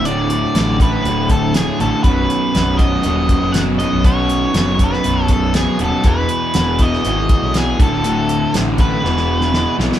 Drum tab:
HH |x-x-x-x-x-x-x-x-|x-x-x-x-x-x-x-x-|x-x-x-x-x-x-x-x-|x-x-x-x-x-x-x-x-|
SD |----o-------o---|----o-------o---|----o--o----o---|----o--o----o---|
BD |------o---o-----|o-----o---o-----|o-----o---o-----|o-----o---o---o-|

HH |x-x-x-x---------|
SD |----o---oo-oo-oo|
BD |------o---------|